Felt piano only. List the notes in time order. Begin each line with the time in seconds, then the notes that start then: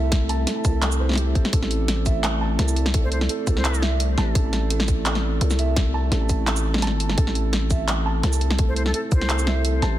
Already playing: A4 E5 A5
0.29 A5
0.47 A4
0.82 A4
1.00 C5
1.18 G4
1.53 A4
2.06 E5
2.41 A5
2.59 A4
2.94 A4
3.29 A4
3.82 E5
4.18 A5
4.35 A4
4.71 A4
5.06 A4
5.59 E5
5.94 A5
6.12 A4
6.47 A4
6.82 A5
7.18 A4
7.70 E5
8.06 A5
8.23 A4
8.59 A4
8.94 A4
9.47 E5
9.82 A5